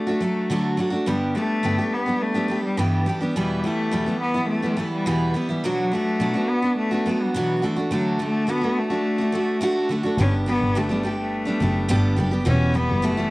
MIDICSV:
0, 0, Header, 1, 4, 480
1, 0, Start_track
1, 0, Tempo, 569801
1, 906, Time_signature, 4, 2, 24, 8
1, 11206, End_track
2, 0, Start_track
2, 0, Title_t, "Steel-string acoustic guitar"
2, 0, Program_c, 0, 25
2, 56, Note_on_c, 0, 66, 51
2, 69, Note_on_c, 0, 62, 48
2, 78, Note_on_c, 0, 57, 38
2, 172, Note_on_c, 0, 54, 48
2, 173, Note_off_c, 0, 57, 0
2, 181, Note_off_c, 0, 66, 0
2, 182, Note_off_c, 0, 62, 0
2, 183, Note_on_c, 0, 57, 55
2, 192, Note_on_c, 0, 62, 54
2, 199, Note_on_c, 0, 66, 57
2, 416, Note_off_c, 0, 54, 0
2, 418, Note_on_c, 0, 50, 69
2, 421, Note_off_c, 0, 57, 0
2, 423, Note_off_c, 0, 62, 0
2, 426, Note_on_c, 0, 54, 64
2, 428, Note_off_c, 0, 66, 0
2, 431, Note_on_c, 0, 57, 71
2, 433, Note_on_c, 0, 62, 81
2, 438, Note_on_c, 0, 66, 79
2, 640, Note_off_c, 0, 54, 0
2, 650, Note_off_c, 0, 57, 0
2, 650, Note_on_c, 0, 54, 60
2, 656, Note_off_c, 0, 62, 0
2, 660, Note_on_c, 0, 57, 52
2, 662, Note_off_c, 0, 50, 0
2, 665, Note_off_c, 0, 66, 0
2, 666, Note_on_c, 0, 62, 54
2, 675, Note_on_c, 0, 66, 59
2, 750, Note_off_c, 0, 66, 0
2, 760, Note_on_c, 0, 66, 45
2, 768, Note_off_c, 0, 62, 0
2, 776, Note_off_c, 0, 57, 0
2, 778, Note_off_c, 0, 54, 0
2, 778, Note_on_c, 0, 62, 41
2, 786, Note_on_c, 0, 57, 33
2, 893, Note_off_c, 0, 66, 0
2, 895, Note_on_c, 0, 43, 62
2, 898, Note_off_c, 0, 62, 0
2, 900, Note_on_c, 0, 50, 70
2, 901, Note_off_c, 0, 57, 0
2, 904, Note_on_c, 0, 55, 61
2, 904, Note_on_c, 0, 59, 75
2, 908, Note_on_c, 0, 62, 69
2, 913, Note_on_c, 0, 67, 65
2, 1126, Note_off_c, 0, 55, 0
2, 1134, Note_off_c, 0, 59, 0
2, 1136, Note_on_c, 0, 55, 47
2, 1140, Note_off_c, 0, 43, 0
2, 1142, Note_off_c, 0, 50, 0
2, 1144, Note_off_c, 0, 62, 0
2, 1144, Note_on_c, 0, 59, 49
2, 1149, Note_off_c, 0, 67, 0
2, 1155, Note_on_c, 0, 62, 51
2, 1159, Note_on_c, 0, 67, 56
2, 1372, Note_off_c, 0, 55, 0
2, 1372, Note_on_c, 0, 43, 59
2, 1375, Note_off_c, 0, 59, 0
2, 1377, Note_off_c, 0, 62, 0
2, 1379, Note_on_c, 0, 50, 59
2, 1380, Note_off_c, 0, 67, 0
2, 1382, Note_on_c, 0, 55, 59
2, 1385, Note_on_c, 0, 59, 61
2, 1387, Note_on_c, 0, 62, 53
2, 1390, Note_on_c, 0, 67, 64
2, 1492, Note_off_c, 0, 67, 0
2, 1498, Note_off_c, 0, 43, 0
2, 1498, Note_off_c, 0, 62, 0
2, 1502, Note_off_c, 0, 50, 0
2, 1502, Note_on_c, 0, 67, 46
2, 1503, Note_off_c, 0, 55, 0
2, 1505, Note_off_c, 0, 59, 0
2, 1509, Note_on_c, 0, 62, 39
2, 1519, Note_on_c, 0, 59, 42
2, 1528, Note_on_c, 0, 55, 40
2, 1725, Note_off_c, 0, 67, 0
2, 1735, Note_on_c, 0, 67, 39
2, 1736, Note_off_c, 0, 62, 0
2, 1742, Note_off_c, 0, 59, 0
2, 1746, Note_on_c, 0, 62, 38
2, 1751, Note_off_c, 0, 55, 0
2, 1752, Note_on_c, 0, 59, 33
2, 1761, Note_on_c, 0, 55, 34
2, 1964, Note_off_c, 0, 67, 0
2, 1971, Note_off_c, 0, 62, 0
2, 1974, Note_on_c, 0, 67, 47
2, 1980, Note_off_c, 0, 59, 0
2, 1981, Note_on_c, 0, 62, 44
2, 1990, Note_off_c, 0, 55, 0
2, 1990, Note_on_c, 0, 59, 45
2, 2000, Note_on_c, 0, 55, 42
2, 2081, Note_off_c, 0, 55, 0
2, 2091, Note_on_c, 0, 55, 52
2, 2094, Note_off_c, 0, 59, 0
2, 2099, Note_off_c, 0, 62, 0
2, 2099, Note_off_c, 0, 67, 0
2, 2104, Note_on_c, 0, 59, 55
2, 2109, Note_on_c, 0, 62, 53
2, 2118, Note_on_c, 0, 67, 59
2, 2337, Note_off_c, 0, 55, 0
2, 2337, Note_on_c, 0, 43, 73
2, 2339, Note_off_c, 0, 59, 0
2, 2340, Note_on_c, 0, 50, 71
2, 2342, Note_off_c, 0, 62, 0
2, 2347, Note_off_c, 0, 67, 0
2, 2347, Note_on_c, 0, 55, 69
2, 2349, Note_on_c, 0, 59, 83
2, 2352, Note_on_c, 0, 62, 78
2, 2358, Note_on_c, 0, 67, 74
2, 2569, Note_off_c, 0, 55, 0
2, 2579, Note_on_c, 0, 55, 57
2, 2580, Note_off_c, 0, 43, 0
2, 2580, Note_off_c, 0, 59, 0
2, 2582, Note_off_c, 0, 50, 0
2, 2588, Note_off_c, 0, 62, 0
2, 2590, Note_on_c, 0, 59, 50
2, 2591, Note_off_c, 0, 67, 0
2, 2601, Note_on_c, 0, 62, 54
2, 2606, Note_on_c, 0, 67, 51
2, 2690, Note_off_c, 0, 67, 0
2, 2699, Note_off_c, 0, 62, 0
2, 2700, Note_on_c, 0, 67, 40
2, 2701, Note_off_c, 0, 55, 0
2, 2707, Note_off_c, 0, 59, 0
2, 2709, Note_on_c, 0, 62, 41
2, 2720, Note_on_c, 0, 59, 39
2, 2727, Note_on_c, 0, 55, 31
2, 2822, Note_off_c, 0, 67, 0
2, 2826, Note_off_c, 0, 62, 0
2, 2828, Note_off_c, 0, 55, 0
2, 2829, Note_off_c, 0, 59, 0
2, 2829, Note_on_c, 0, 40, 61
2, 2830, Note_on_c, 0, 47, 64
2, 2836, Note_on_c, 0, 52, 68
2, 2839, Note_on_c, 0, 55, 80
2, 2840, Note_on_c, 0, 59, 71
2, 2843, Note_on_c, 0, 64, 65
2, 3053, Note_off_c, 0, 52, 0
2, 3063, Note_off_c, 0, 55, 0
2, 3063, Note_on_c, 0, 52, 51
2, 3066, Note_off_c, 0, 40, 0
2, 3067, Note_off_c, 0, 47, 0
2, 3071, Note_off_c, 0, 59, 0
2, 3073, Note_off_c, 0, 64, 0
2, 3073, Note_on_c, 0, 55, 46
2, 3082, Note_on_c, 0, 59, 53
2, 3089, Note_on_c, 0, 64, 55
2, 3296, Note_off_c, 0, 52, 0
2, 3297, Note_on_c, 0, 40, 62
2, 3300, Note_off_c, 0, 55, 0
2, 3304, Note_off_c, 0, 59, 0
2, 3305, Note_on_c, 0, 47, 65
2, 3306, Note_on_c, 0, 52, 52
2, 3308, Note_off_c, 0, 64, 0
2, 3310, Note_on_c, 0, 55, 66
2, 3314, Note_on_c, 0, 59, 58
2, 3318, Note_on_c, 0, 64, 66
2, 3411, Note_off_c, 0, 64, 0
2, 3420, Note_off_c, 0, 40, 0
2, 3422, Note_on_c, 0, 64, 47
2, 3423, Note_off_c, 0, 59, 0
2, 3424, Note_off_c, 0, 47, 0
2, 3425, Note_off_c, 0, 52, 0
2, 3427, Note_off_c, 0, 55, 0
2, 3433, Note_on_c, 0, 59, 44
2, 3441, Note_on_c, 0, 55, 40
2, 3447, Note_on_c, 0, 52, 36
2, 3647, Note_off_c, 0, 64, 0
2, 3657, Note_on_c, 0, 64, 44
2, 3659, Note_off_c, 0, 59, 0
2, 3666, Note_off_c, 0, 55, 0
2, 3669, Note_on_c, 0, 59, 41
2, 3673, Note_off_c, 0, 52, 0
2, 3676, Note_on_c, 0, 55, 39
2, 3683, Note_on_c, 0, 52, 39
2, 3885, Note_off_c, 0, 64, 0
2, 3893, Note_off_c, 0, 59, 0
2, 3895, Note_on_c, 0, 64, 45
2, 3903, Note_off_c, 0, 55, 0
2, 3903, Note_on_c, 0, 59, 49
2, 3913, Note_off_c, 0, 52, 0
2, 3913, Note_on_c, 0, 55, 41
2, 3924, Note_on_c, 0, 52, 41
2, 4005, Note_off_c, 0, 52, 0
2, 4015, Note_on_c, 0, 52, 57
2, 4017, Note_off_c, 0, 55, 0
2, 4019, Note_off_c, 0, 64, 0
2, 4023, Note_off_c, 0, 59, 0
2, 4027, Note_on_c, 0, 55, 47
2, 4034, Note_on_c, 0, 59, 63
2, 4042, Note_on_c, 0, 64, 54
2, 4259, Note_off_c, 0, 52, 0
2, 4261, Note_off_c, 0, 55, 0
2, 4262, Note_on_c, 0, 40, 71
2, 4263, Note_on_c, 0, 47, 70
2, 4264, Note_off_c, 0, 59, 0
2, 4268, Note_off_c, 0, 64, 0
2, 4270, Note_on_c, 0, 52, 79
2, 4271, Note_on_c, 0, 55, 79
2, 4274, Note_on_c, 0, 59, 73
2, 4278, Note_on_c, 0, 64, 78
2, 4488, Note_off_c, 0, 52, 0
2, 4499, Note_off_c, 0, 55, 0
2, 4499, Note_on_c, 0, 52, 54
2, 4502, Note_off_c, 0, 40, 0
2, 4503, Note_off_c, 0, 47, 0
2, 4508, Note_off_c, 0, 59, 0
2, 4510, Note_on_c, 0, 55, 55
2, 4511, Note_off_c, 0, 64, 0
2, 4517, Note_on_c, 0, 59, 54
2, 4523, Note_on_c, 0, 64, 51
2, 4612, Note_off_c, 0, 64, 0
2, 4621, Note_off_c, 0, 52, 0
2, 4622, Note_on_c, 0, 64, 44
2, 4624, Note_off_c, 0, 59, 0
2, 4626, Note_off_c, 0, 55, 0
2, 4634, Note_on_c, 0, 59, 41
2, 4639, Note_on_c, 0, 55, 38
2, 4647, Note_on_c, 0, 52, 37
2, 4743, Note_off_c, 0, 64, 0
2, 4749, Note_off_c, 0, 59, 0
2, 4749, Note_on_c, 0, 47, 68
2, 4751, Note_off_c, 0, 52, 0
2, 4751, Note_off_c, 0, 55, 0
2, 4754, Note_on_c, 0, 54, 68
2, 4761, Note_on_c, 0, 59, 69
2, 4762, Note_on_c, 0, 62, 76
2, 4766, Note_on_c, 0, 66, 77
2, 4974, Note_off_c, 0, 54, 0
2, 4984, Note_on_c, 0, 54, 48
2, 4986, Note_off_c, 0, 47, 0
2, 4986, Note_off_c, 0, 59, 0
2, 4992, Note_off_c, 0, 62, 0
2, 4994, Note_off_c, 0, 66, 0
2, 4996, Note_on_c, 0, 59, 50
2, 5002, Note_on_c, 0, 62, 49
2, 5010, Note_on_c, 0, 66, 57
2, 5214, Note_off_c, 0, 54, 0
2, 5220, Note_off_c, 0, 59, 0
2, 5221, Note_on_c, 0, 47, 67
2, 5225, Note_off_c, 0, 62, 0
2, 5225, Note_off_c, 0, 66, 0
2, 5225, Note_on_c, 0, 54, 59
2, 5230, Note_on_c, 0, 59, 61
2, 5235, Note_on_c, 0, 62, 59
2, 5235, Note_on_c, 0, 66, 63
2, 5328, Note_off_c, 0, 66, 0
2, 5338, Note_on_c, 0, 66, 46
2, 5341, Note_off_c, 0, 62, 0
2, 5342, Note_off_c, 0, 47, 0
2, 5344, Note_off_c, 0, 54, 0
2, 5347, Note_off_c, 0, 59, 0
2, 5351, Note_on_c, 0, 62, 43
2, 5365, Note_on_c, 0, 59, 38
2, 5569, Note_off_c, 0, 66, 0
2, 5579, Note_on_c, 0, 66, 44
2, 5583, Note_off_c, 0, 62, 0
2, 5593, Note_on_c, 0, 62, 41
2, 5594, Note_off_c, 0, 59, 0
2, 5605, Note_on_c, 0, 59, 32
2, 5810, Note_off_c, 0, 66, 0
2, 5820, Note_on_c, 0, 66, 45
2, 5824, Note_off_c, 0, 62, 0
2, 5834, Note_off_c, 0, 59, 0
2, 5834, Note_on_c, 0, 62, 52
2, 5845, Note_on_c, 0, 59, 40
2, 5941, Note_off_c, 0, 66, 0
2, 5943, Note_off_c, 0, 59, 0
2, 5945, Note_on_c, 0, 54, 50
2, 5948, Note_off_c, 0, 62, 0
2, 5954, Note_on_c, 0, 59, 60
2, 5963, Note_on_c, 0, 62, 51
2, 5974, Note_on_c, 0, 66, 60
2, 6184, Note_off_c, 0, 54, 0
2, 6187, Note_on_c, 0, 47, 76
2, 6188, Note_off_c, 0, 59, 0
2, 6193, Note_off_c, 0, 62, 0
2, 6197, Note_on_c, 0, 54, 77
2, 6199, Note_off_c, 0, 66, 0
2, 6200, Note_on_c, 0, 59, 86
2, 6206, Note_on_c, 0, 62, 82
2, 6207, Note_on_c, 0, 66, 78
2, 6417, Note_off_c, 0, 54, 0
2, 6420, Note_on_c, 0, 50, 51
2, 6424, Note_off_c, 0, 62, 0
2, 6425, Note_off_c, 0, 47, 0
2, 6425, Note_off_c, 0, 59, 0
2, 6429, Note_on_c, 0, 57, 60
2, 6434, Note_on_c, 0, 62, 65
2, 6435, Note_off_c, 0, 66, 0
2, 6448, Note_on_c, 0, 66, 54
2, 6530, Note_off_c, 0, 66, 0
2, 6540, Note_on_c, 0, 66, 47
2, 6541, Note_off_c, 0, 50, 0
2, 6543, Note_off_c, 0, 62, 0
2, 6546, Note_off_c, 0, 57, 0
2, 6553, Note_on_c, 0, 62, 40
2, 6565, Note_on_c, 0, 57, 41
2, 6659, Note_off_c, 0, 57, 0
2, 6661, Note_off_c, 0, 62, 0
2, 6661, Note_off_c, 0, 66, 0
2, 6661, Note_on_c, 0, 50, 63
2, 6669, Note_on_c, 0, 57, 68
2, 6671, Note_on_c, 0, 62, 75
2, 6681, Note_on_c, 0, 66, 71
2, 6891, Note_off_c, 0, 50, 0
2, 6896, Note_off_c, 0, 57, 0
2, 6901, Note_on_c, 0, 50, 55
2, 6907, Note_off_c, 0, 62, 0
2, 6907, Note_on_c, 0, 57, 54
2, 6912, Note_off_c, 0, 66, 0
2, 6919, Note_on_c, 0, 62, 54
2, 6924, Note_on_c, 0, 66, 53
2, 7124, Note_off_c, 0, 50, 0
2, 7132, Note_off_c, 0, 57, 0
2, 7134, Note_on_c, 0, 50, 54
2, 7138, Note_off_c, 0, 62, 0
2, 7142, Note_on_c, 0, 57, 58
2, 7143, Note_off_c, 0, 66, 0
2, 7148, Note_on_c, 0, 62, 63
2, 7153, Note_on_c, 0, 66, 68
2, 7246, Note_off_c, 0, 66, 0
2, 7256, Note_on_c, 0, 66, 41
2, 7259, Note_off_c, 0, 50, 0
2, 7262, Note_off_c, 0, 57, 0
2, 7263, Note_off_c, 0, 62, 0
2, 7273, Note_on_c, 0, 62, 42
2, 7280, Note_on_c, 0, 57, 37
2, 7487, Note_off_c, 0, 66, 0
2, 7497, Note_on_c, 0, 66, 40
2, 7500, Note_off_c, 0, 62, 0
2, 7510, Note_on_c, 0, 62, 42
2, 7512, Note_off_c, 0, 57, 0
2, 7525, Note_on_c, 0, 57, 34
2, 7724, Note_off_c, 0, 66, 0
2, 7734, Note_on_c, 0, 66, 48
2, 7739, Note_off_c, 0, 62, 0
2, 7749, Note_on_c, 0, 62, 43
2, 7751, Note_off_c, 0, 57, 0
2, 7761, Note_on_c, 0, 57, 39
2, 7853, Note_off_c, 0, 57, 0
2, 7853, Note_on_c, 0, 50, 57
2, 7859, Note_off_c, 0, 66, 0
2, 7863, Note_on_c, 0, 57, 50
2, 7864, Note_off_c, 0, 62, 0
2, 7874, Note_on_c, 0, 62, 49
2, 7878, Note_on_c, 0, 66, 58
2, 8082, Note_off_c, 0, 50, 0
2, 8090, Note_off_c, 0, 57, 0
2, 8092, Note_on_c, 0, 50, 74
2, 8099, Note_off_c, 0, 62, 0
2, 8101, Note_on_c, 0, 57, 84
2, 8103, Note_off_c, 0, 66, 0
2, 8109, Note_on_c, 0, 62, 81
2, 8113, Note_on_c, 0, 66, 87
2, 8321, Note_off_c, 0, 50, 0
2, 8331, Note_on_c, 0, 50, 54
2, 8334, Note_off_c, 0, 57, 0
2, 8342, Note_off_c, 0, 62, 0
2, 8344, Note_on_c, 0, 57, 56
2, 8348, Note_off_c, 0, 66, 0
2, 8352, Note_on_c, 0, 62, 62
2, 8358, Note_on_c, 0, 66, 57
2, 8441, Note_off_c, 0, 66, 0
2, 8451, Note_on_c, 0, 66, 46
2, 8455, Note_off_c, 0, 62, 0
2, 8457, Note_off_c, 0, 50, 0
2, 8464, Note_off_c, 0, 57, 0
2, 8465, Note_on_c, 0, 62, 42
2, 8476, Note_on_c, 0, 57, 44
2, 8577, Note_off_c, 0, 66, 0
2, 8578, Note_on_c, 0, 43, 71
2, 8580, Note_on_c, 0, 50, 81
2, 8581, Note_off_c, 0, 62, 0
2, 8584, Note_on_c, 0, 55, 66
2, 8585, Note_off_c, 0, 57, 0
2, 8588, Note_on_c, 0, 59, 73
2, 8592, Note_on_c, 0, 62, 66
2, 8597, Note_on_c, 0, 67, 77
2, 8803, Note_off_c, 0, 55, 0
2, 8813, Note_on_c, 0, 55, 51
2, 8814, Note_off_c, 0, 59, 0
2, 8821, Note_off_c, 0, 43, 0
2, 8822, Note_off_c, 0, 50, 0
2, 8822, Note_off_c, 0, 62, 0
2, 8824, Note_on_c, 0, 59, 55
2, 8828, Note_off_c, 0, 67, 0
2, 8832, Note_on_c, 0, 62, 51
2, 8838, Note_on_c, 0, 67, 54
2, 9057, Note_off_c, 0, 55, 0
2, 9057, Note_on_c, 0, 43, 69
2, 9058, Note_off_c, 0, 59, 0
2, 9061, Note_off_c, 0, 62, 0
2, 9063, Note_on_c, 0, 50, 54
2, 9064, Note_off_c, 0, 67, 0
2, 9067, Note_on_c, 0, 55, 67
2, 9068, Note_on_c, 0, 59, 64
2, 9072, Note_on_c, 0, 62, 68
2, 9074, Note_on_c, 0, 67, 67
2, 9164, Note_off_c, 0, 67, 0
2, 9174, Note_on_c, 0, 67, 47
2, 9175, Note_off_c, 0, 62, 0
2, 9180, Note_off_c, 0, 43, 0
2, 9182, Note_off_c, 0, 59, 0
2, 9183, Note_off_c, 0, 50, 0
2, 9185, Note_off_c, 0, 55, 0
2, 9185, Note_on_c, 0, 62, 42
2, 9193, Note_on_c, 0, 59, 43
2, 9202, Note_on_c, 0, 55, 37
2, 9283, Note_off_c, 0, 55, 0
2, 9293, Note_on_c, 0, 55, 53
2, 9294, Note_off_c, 0, 59, 0
2, 9299, Note_off_c, 0, 67, 0
2, 9302, Note_off_c, 0, 62, 0
2, 9304, Note_on_c, 0, 59, 51
2, 9312, Note_on_c, 0, 62, 52
2, 9320, Note_on_c, 0, 67, 50
2, 9638, Note_off_c, 0, 67, 0
2, 9648, Note_on_c, 0, 67, 49
2, 9649, Note_off_c, 0, 62, 0
2, 9659, Note_off_c, 0, 55, 0
2, 9659, Note_off_c, 0, 59, 0
2, 9659, Note_on_c, 0, 62, 51
2, 9669, Note_on_c, 0, 59, 42
2, 9676, Note_on_c, 0, 55, 40
2, 9763, Note_off_c, 0, 55, 0
2, 9773, Note_on_c, 0, 55, 49
2, 9776, Note_off_c, 0, 67, 0
2, 9777, Note_off_c, 0, 59, 0
2, 9782, Note_off_c, 0, 62, 0
2, 9787, Note_on_c, 0, 59, 58
2, 9792, Note_on_c, 0, 62, 58
2, 9800, Note_on_c, 0, 67, 55
2, 10009, Note_off_c, 0, 55, 0
2, 10012, Note_on_c, 0, 43, 78
2, 10014, Note_off_c, 0, 59, 0
2, 10016, Note_on_c, 0, 50, 96
2, 10017, Note_off_c, 0, 62, 0
2, 10019, Note_off_c, 0, 67, 0
2, 10019, Note_on_c, 0, 55, 86
2, 10024, Note_on_c, 0, 59, 101
2, 10027, Note_on_c, 0, 62, 94
2, 10029, Note_on_c, 0, 67, 97
2, 10237, Note_off_c, 0, 55, 0
2, 10247, Note_off_c, 0, 59, 0
2, 10247, Note_on_c, 0, 55, 63
2, 10253, Note_off_c, 0, 62, 0
2, 10257, Note_on_c, 0, 59, 64
2, 10258, Note_off_c, 0, 43, 0
2, 10260, Note_off_c, 0, 50, 0
2, 10263, Note_on_c, 0, 62, 66
2, 10264, Note_off_c, 0, 67, 0
2, 10274, Note_on_c, 0, 67, 69
2, 10361, Note_off_c, 0, 67, 0
2, 10371, Note_off_c, 0, 62, 0
2, 10371, Note_on_c, 0, 67, 48
2, 10376, Note_off_c, 0, 55, 0
2, 10377, Note_off_c, 0, 59, 0
2, 10382, Note_on_c, 0, 62, 39
2, 10387, Note_on_c, 0, 59, 42
2, 10393, Note_on_c, 0, 55, 39
2, 10487, Note_off_c, 0, 55, 0
2, 10487, Note_on_c, 0, 40, 72
2, 10490, Note_on_c, 0, 47, 73
2, 10493, Note_off_c, 0, 59, 0
2, 10494, Note_on_c, 0, 52, 75
2, 10497, Note_on_c, 0, 55, 75
2, 10498, Note_off_c, 0, 67, 0
2, 10499, Note_off_c, 0, 62, 0
2, 10503, Note_on_c, 0, 59, 71
2, 10503, Note_on_c, 0, 64, 72
2, 10721, Note_off_c, 0, 52, 0
2, 10728, Note_off_c, 0, 55, 0
2, 10731, Note_on_c, 0, 52, 52
2, 10736, Note_off_c, 0, 40, 0
2, 10737, Note_off_c, 0, 59, 0
2, 10738, Note_off_c, 0, 47, 0
2, 10738, Note_on_c, 0, 55, 57
2, 10744, Note_off_c, 0, 64, 0
2, 10747, Note_on_c, 0, 59, 51
2, 10755, Note_on_c, 0, 64, 61
2, 10970, Note_on_c, 0, 40, 64
2, 10971, Note_off_c, 0, 52, 0
2, 10971, Note_off_c, 0, 55, 0
2, 10976, Note_on_c, 0, 47, 63
2, 10977, Note_off_c, 0, 59, 0
2, 10980, Note_off_c, 0, 64, 0
2, 10981, Note_on_c, 0, 52, 66
2, 10982, Note_on_c, 0, 55, 66
2, 10987, Note_on_c, 0, 59, 63
2, 10990, Note_on_c, 0, 64, 75
2, 11086, Note_off_c, 0, 64, 0
2, 11095, Note_off_c, 0, 59, 0
2, 11096, Note_on_c, 0, 64, 49
2, 11098, Note_off_c, 0, 40, 0
2, 11101, Note_off_c, 0, 47, 0
2, 11103, Note_off_c, 0, 52, 0
2, 11103, Note_off_c, 0, 55, 0
2, 11105, Note_on_c, 0, 59, 45
2, 11114, Note_on_c, 0, 55, 43
2, 11118, Note_on_c, 0, 52, 40
2, 11206, Note_off_c, 0, 52, 0
2, 11206, Note_off_c, 0, 55, 0
2, 11206, Note_off_c, 0, 59, 0
2, 11206, Note_off_c, 0, 64, 0
2, 11206, End_track
3, 0, Start_track
3, 0, Title_t, "Cello"
3, 0, Program_c, 1, 42
3, 0, Note_on_c, 1, 57, 68
3, 665, Note_off_c, 1, 57, 0
3, 904, Note_on_c, 1, 55, 77
3, 1012, Note_off_c, 1, 55, 0
3, 1143, Note_on_c, 1, 57, 100
3, 1632, Note_on_c, 1, 59, 91
3, 1645, Note_off_c, 1, 57, 0
3, 1870, Note_on_c, 1, 57, 89
3, 1882, Note_off_c, 1, 59, 0
3, 2227, Note_off_c, 1, 57, 0
3, 2232, Note_on_c, 1, 55, 86
3, 2349, Note_on_c, 1, 52, 80
3, 2361, Note_off_c, 1, 55, 0
3, 2706, Note_off_c, 1, 52, 0
3, 2821, Note_on_c, 1, 55, 79
3, 3071, Note_on_c, 1, 57, 92
3, 3084, Note_off_c, 1, 55, 0
3, 3541, Note_off_c, 1, 57, 0
3, 3546, Note_on_c, 1, 59, 102
3, 3768, Note_off_c, 1, 59, 0
3, 3783, Note_on_c, 1, 57, 81
3, 4117, Note_off_c, 1, 57, 0
3, 4147, Note_on_c, 1, 55, 83
3, 4273, Note_on_c, 1, 52, 77
3, 4285, Note_off_c, 1, 55, 0
3, 4628, Note_off_c, 1, 52, 0
3, 4747, Note_on_c, 1, 54, 78
3, 4990, Note_on_c, 1, 57, 89
3, 5002, Note_off_c, 1, 54, 0
3, 5471, Note_on_c, 1, 59, 93
3, 5484, Note_off_c, 1, 57, 0
3, 5707, Note_off_c, 1, 59, 0
3, 5711, Note_on_c, 1, 57, 86
3, 6077, Note_on_c, 1, 55, 77
3, 6089, Note_off_c, 1, 57, 0
3, 6190, Note_off_c, 1, 55, 0
3, 6196, Note_on_c, 1, 52, 69
3, 6524, Note_off_c, 1, 52, 0
3, 6680, Note_on_c, 1, 54, 75
3, 6895, Note_off_c, 1, 54, 0
3, 6927, Note_on_c, 1, 57, 82
3, 7163, Note_on_c, 1, 59, 90
3, 7176, Note_off_c, 1, 57, 0
3, 7403, Note_on_c, 1, 57, 90
3, 7415, Note_off_c, 1, 59, 0
3, 8353, Note_off_c, 1, 57, 0
3, 8604, Note_on_c, 1, 61, 83
3, 8708, Note_off_c, 1, 61, 0
3, 8838, Note_on_c, 1, 59, 92
3, 9077, Note_on_c, 1, 57, 81
3, 9090, Note_off_c, 1, 59, 0
3, 9431, Note_off_c, 1, 57, 0
3, 9434, Note_on_c, 1, 57, 75
3, 10236, Note_off_c, 1, 57, 0
3, 10511, Note_on_c, 1, 61, 88
3, 10744, Note_on_c, 1, 59, 99
3, 10756, Note_off_c, 1, 61, 0
3, 10980, Note_on_c, 1, 57, 106
3, 10992, Note_off_c, 1, 59, 0
3, 11206, Note_off_c, 1, 57, 0
3, 11206, End_track
4, 0, Start_track
4, 0, Title_t, "Double bass"
4, 0, Program_c, 2, 43
4, 8573, Note_on_c, 2, 31, 91
4, 8873, Note_off_c, 2, 31, 0
4, 8939, Note_on_c, 2, 31, 73
4, 9748, Note_off_c, 2, 31, 0
4, 9779, Note_on_c, 2, 30, 87
4, 9978, Note_off_c, 2, 30, 0
4, 10022, Note_on_c, 2, 31, 81
4, 10220, Note_off_c, 2, 31, 0
4, 10265, Note_on_c, 2, 30, 77
4, 10462, Note_off_c, 2, 30, 0
4, 10505, Note_on_c, 2, 28, 107
4, 10800, Note_off_c, 2, 28, 0
4, 10864, Note_on_c, 2, 30, 75
4, 11061, Note_off_c, 2, 30, 0
4, 11206, End_track
0, 0, End_of_file